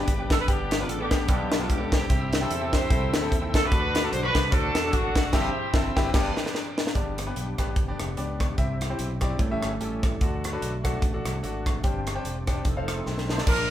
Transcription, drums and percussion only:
0.08 kick medium
0.08 closed hi-hat medium
0.30 kick loud
0.30 snare loud
0.30 closed hi-hat medium
0.48 kick loud
0.48 closed hi-hat medium
0.71 snare loud
0.71 closed hi-hat medium
0.89 closed hi-hat medium
1.11 kick medium
1.11 snare loud
1.11 closed hi-hat medium
1.28 kick loud
1.28 closed hi-hat medium
1.52 snare loud
1.52 closed hi-hat medium
1.70 kick medium
1.70 closed hi-hat medium
1.92 kick loud
1.92 snare loud
1.92 closed hi-hat medium
2.10 kick loud
2.10 closed hi-hat medium
2.33 snare loud
2.33 closed hi-hat medium
2.51 closed hi-hat medium
2.73 kick medium
2.73 snare loud
2.73 closed hi-hat medium
2.90 kick loud
2.90 closed hi-hat medium
3.14 snare loud
3.14 closed hi-hat medium
3.32 kick medium
3.32 closed hi-hat medium
3.54 kick loud
3.54 snare loud
3.54 closed hi-hat medium
3.72 kick loud
3.72 closed hi-hat medium
3.95 snare loud
3.95 closed hi-hat medium
4.13 closed hi-hat medium
4.35 kick medium
4.35 snare loud
4.35 closed hi-hat medium
4.52 kick loud
4.52 closed hi-hat medium
4.75 snare loud
4.75 closed hi-hat medium
4.93 kick medium
4.93 closed hi-hat medium
5.16 kick loud
5.16 snare loud
5.16 closed hi-hat medium
5.33 kick loud
5.33 snare loud
5.33 crash medium
5.74 kick loud
5.74 snare loud
5.97 kick medium
5.97 snare loud
6.14 kick loud
6.14 snare loud
6.14 crash medium
6.37 snare medium
6.46 snare medium
6.55 snare medium
6.78 snare loud
6.87 snare medium
6.95 kick medium
6.95 closed hi-hat medium
7.18 cross-stick medium
7.18 closed hi-hat medium
7.36 closed hi-hat medium
7.58 kick medium
7.58 cross-stick medium
7.58 closed hi-hat medium
7.76 kick loud
7.76 closed hi-hat medium
8.00 cross-stick loud
8.00 closed hi-hat medium
8.17 closed hi-hat medium
8.40 kick medium
8.40 cross-stick loud
8.40 closed hi-hat soft
8.58 kick medium
8.58 closed hi-hat medium
8.81 cross-stick medium
8.81 closed hi-hat medium
8.99 closed hi-hat medium
9.21 kick medium
9.21 cross-stick medium
9.21 closed hi-hat medium
9.39 kick loud
9.39 closed hi-hat medium
9.63 cross-stick loud
9.63 closed hi-hat medium
9.81 closed hi-hat medium
10.03 kick loud
10.03 cross-stick loud
10.03 closed hi-hat soft
10.21 kick loud
10.21 closed hi-hat medium
10.44 cross-stick medium
10.44 closed hi-hat medium
10.62 closed hi-hat medium
10.85 kick medium
10.85 cross-stick loud
10.85 closed hi-hat medium
11.02 kick loud
11.02 closed hi-hat medium
11.26 cross-stick loud
11.26 closed hi-hat medium
11.44 closed hi-hat medium
11.66 kick medium
11.66 cross-stick loud
11.66 closed hi-hat medium
11.84 kick medium
11.84 closed hi-hat medium
12.07 cross-stick loud
12.07 closed hi-hat medium
12.25 closed hi-hat medium
12.47 kick medium
12.47 cross-stick medium
12.47 closed hi-hat medium
12.65 kick medium
12.65 closed hi-hat medium
12.88 cross-stick loud
12.88 closed hi-hat medium
13.06 snare soft
13.18 snare soft
13.29 snare medium
13.38 snare medium
13.47 kick loud
13.47 crash loud

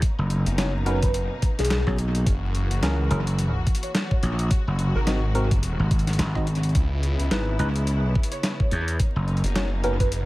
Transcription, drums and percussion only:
0.02 kick loud
0.02 closed hi-hat medium
0.30 closed hi-hat soft
0.46 closed hi-hat medium
0.58 snare loud
0.58 closed hi-hat medium
0.86 closed hi-hat soft
1.02 kick loud
1.02 closed hi-hat medium
1.14 closed hi-hat medium
1.42 kick loud
1.42 closed hi-hat medium
1.59 snare soft
1.59 closed hi-hat medium
1.61 snare soft
1.65 snare soft
1.65 closed hi-hat medium
1.66 snare soft
1.68 snare soft
1.70 snare loud
1.70 closed hi-hat medium
1.87 kick medium
1.87 cross-stick soft
1.98 closed hi-hat soft
2.15 closed hi-hat medium
2.27 kick loud
2.27 closed hi-hat medium
2.55 closed hi-hat soft
2.71 closed hi-hat medium
2.83 snare loud
2.83 closed hi-hat medium
3.11 closed hi-hat soft
3.27 closed hi-hat medium
3.39 closed hi-hat medium
3.67 kick loud
3.67 closed hi-hat medium
3.75 closed hi-hat medium
3.83 closed hi-hat medium
3.95 snare loud
3.95 closed hi-hat medium
4.11 kick loud
4.23 closed hi-hat soft
4.39 closed hi-hat medium
4.51 kick loud
4.51 closed hi-hat medium
4.79 closed hi-hat soft
5.07 snare loud
5.07 closed hi-hat medium
5.35 closed hi-hat soft
5.51 kick loud
5.51 closed hi-hat medium
5.63 closed hi-hat medium
5.91 kick loud
5.91 closed hi-hat soft
5.99 closed hi-hat soft
6.07 snare soft
6.07 closed hi-hat medium
6.13 closed hi-hat soft
6.19 snare loud
6.19 closed hi-hat medium
6.35 kick medium
6.35 cross-stick soft
6.47 closed hi-hat soft
6.55 closed hi-hat soft
6.63 closed hi-hat medium
6.69 closed hi-hat soft
6.75 kick loud
6.75 closed hi-hat medium
7.03 closed hi-hat soft
7.19 closed hi-hat soft
7.31 snare loud
7.31 closed hi-hat medium
7.59 closed hi-hat soft
7.76 closed hi-hat medium
7.87 closed hi-hat medium
8.15 kick loud
8.23 closed hi-hat medium
8.32 closed hi-hat medium
8.43 snare loud
8.43 closed hi-hat medium
8.60 kick loud
8.71 closed hi-hat soft
8.88 closed hi-hat soft
9.00 kick loud
9.00 closed hi-hat medium
9.28 closed hi-hat soft
9.37 closed hi-hat soft
9.44 closed hi-hat medium
9.46 closed hi-hat soft
9.56 snare loud
9.56 closed hi-hat medium
9.84 closed hi-hat soft
10.00 kick loud
10.00 closed hi-hat medium
10.12 closed hi-hat medium

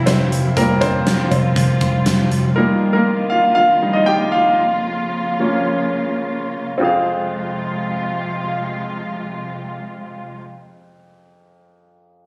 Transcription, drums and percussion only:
0.07 snare medium
0.07 closed hi-hat medium
0.32 closed hi-hat medium
0.57 kick medium
0.57 closed hi-hat medium
0.82 kick medium
0.82 closed hi-hat medium
1.07 snare medium
1.07 closed hi-hat medium
1.31 kick medium
1.31 closed hi-hat medium
1.56 kick medium
1.56 closed hi-hat medium
1.81 kick medium
1.81 closed hi-hat medium
2.06 snare medium
2.06 closed hi-hat medium
2.32 closed hi-hat medium

